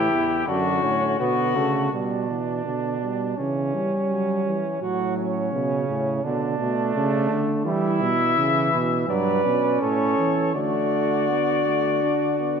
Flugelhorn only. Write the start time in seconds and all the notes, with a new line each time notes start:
Already playing: E4
0.47 D4
0.83 C#4
1.20 B3
1.56 A3
1.92 D4
3.38 C#4
4.82 F#4
5.17 C#4
6.24 D4
7.66 E4
9.08 B4
9.82 A4
10.55 F#4